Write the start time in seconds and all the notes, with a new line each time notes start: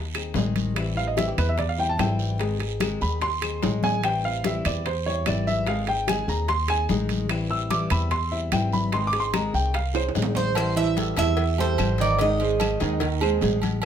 Already playing: D#2
0.15 C4 D#4 G#4, high bongo, high conga, high timbale, claves
0.34 A1 D#3 G#3 C4 D#4 G#4, high bongo, low bongo, high conga, low timbale, short guiro
0.56 high conga, high timbale, short guiro
0.76 E3 G3 C4 E4, high bongo, high timbale, long guiro, claves
0.96 G3 C4 E4 F5, high conga
1.07 D#5
1.16 E3 G3 C4 E4 E5, high bongo, high conga, high timbale, short guiro
1.28 G4
1.38 E2 G3 C4 E4 B4, high conga, low conga, high timbale, short guiro, claves
1.49 E5
1.58 D5, muted nylon-string guitar stroke, high bongo, high conga, low conga, high timbale, long guiro
1.69 F5
1.78 G3 C4 E4 G5, high conga
1.89 A5
1.98 G#1 E3 G3 C4 E4 G5, high bongo, low bongo, high conga, high timbale, low timbale, short guiro, claves
2.19 short guiro
2.39 D#3 G#3 C4 D#4 G#4, high bongo, high conga, high timbale, long guiro
2.60 C4 D#4 G#4, high bongo, high conga, high timbale
2.80 D#3 G#3 C4 D#4 G#4, high bongo, high conga, high timbale, short guiro, claves
3.01 D#2 C4 D#4 G#4 B5, high bongo, high conga, short guiro
3.21 C6, muted nylon-string guitar stroke, high bongo, high conga, high timbale, long guiro
3.42 C4 D#4 G#4, high bongo, high conga, high timbale, claves
3.62 A1 D#3 G#3 C4 D#4 G#4, high bongo, low bongo, high conga, high timbale, short guiro
3.83 G#5, high conga, low timbale, short guiro
4.04 E3 G3 C4 E4 G5, high bongo, high timbale, long guiro, claves
4.24 G3 C4 E4 F5, high conga
4.44 E3 G3 C4 E4 E5, high bongo, high conga, high timbale, short guiro
4.65 E2 G3 C4 E4 D5, high conga, low conga, high timbale, short guiro, claves
4.86 C5, muted nylon-string guitar stroke, high bongo, high conga, high timbale, long guiro
5.06 G3 C4 E4 C#5, high conga
5.26 G#1 E3 G3 C4 E4 D5, high bongo, low bongo, high conga, high timbale, short guiro, claves
5.47 E5, high conga, short guiro
5.67 D#3 G#3 C4 D#4 G#4 F5, high bongo, high conga, high timbale, long guiro
5.87 C4 D#4 G#4 G5, high bongo, high conga, high timbale
6.07 D#3 G#3 C4 D#4 G#4 G#5, high bongo, high conga, high timbale, short guiro, claves
6.28 D#2 C4 D#4 G#4 A#5, high bongo, high conga, short guiro
6.48 C6, muted nylon-string guitar stroke, high bongo, high conga, high timbale, long guiro
6.68 C4 D#4 G#4 G#5, high bongo, high conga, high timbale, claves
6.89 A1 D#3 G#3 C4 D#4 G#4, high bongo, low bongo, high conga, short guiro
7.09 high conga, high timbale, short guiro
7.29 E3 G3 C4 E4, high bongo, high conga, high timbale, long guiro, claves
7.50 G3 C4 E4 E6, high conga
7.71 E3 G3 C4 E4 D6, high bongo, high conga, high timbale, short guiro
7.90 E2 G3 C4 E4 B5, high conga, low conga, high timbale, short guiro, claves
8.11 C6, muted nylon-string guitar stroke, high bongo, high conga, low conga, high timbale, long guiro
8.31 G3 C4 E4 E5, high conga
8.52 G#1 E3 G3 C4 E4 G5, high bongo, low bongo, high conga, high timbale, short guiro, claves
8.73 B5, high conga, short guiro
8.92 D#3 G#3 C4 D#4 G#4 C6, high bongo, high conga, high timbale, long guiro
9.07 D6
9.13 C4 D#4 G#4, high bongo, high conga, high timbale
9.20 C6
9.34 D#3 G#3 C4 D#4 G#4 A#5, high bongo, high conga, high timbale, short guiro, claves
9.54 C2 C4 D#4 G#4 G5, high bongo, high conga, short guiro
9.74 F5, muted nylon-string guitar stroke, high bongo, high conga, high timbale, long guiro
9.94 C4 D#4 G#4 C5, high bongo, high conga, high timbale, claves
10.09 high timbale
10.15 A1 D#3 G#3 C4 D#4 G#4, high bongo, low bongo, high conga, short guiro
10.22 low timbale
10.35 C5, high conga, low timbale, short guiro
10.55 E3 G3 C4 E4 C5, cowbell, high conga, low agogo, long guiro, claves
10.76 E3 E4 E5, high conga, low agogo
10.97 G3 G4 A4, cowbell, high conga, short guiro
11.17 E2 E3 G3 C4 E4 E5, cowbell, high conga, low conga, low agogo, short guiro, claves
11.37 muted nylon-string guitar stroke, cowbell, high conga, long guiro
11.58 G3 C4 E4 G4 A4 C5, high conga, low agogo
11.78 G#1 E3 G3 C4 E4, cowbell, high conga, low agogo, short guiro, claves
11.98 D#3 D#4 D5 D#5, cowbell, short guiro
12.19 D#3 G#3 C4 D#4 G#4 D#5, cowbell, high conga, low agogo, long guiro
12.40 G#3 G#4 C5, high conga, low agogo
12.60 cowbell, high conga, low agogo, short guiro, claves
12.80 D#2 D#3 G#3 C4 D#4 G#4 D#5, cowbell, high conga, short guiro
13.00 D#3 D#4 D#5, muted nylon-string guitar stroke, cowbell, high conga, low agogo, long guiro
13.21 G#3 C4 D#4 G#4 C5, high conga, low agogo, claves
13.41 A1 G#3 C4 D#4 G#4, cowbell, high conga, low timbale, short guiro
13.62 cowbell, high conga, low agogo, short guiro
13.82 E3, low agogo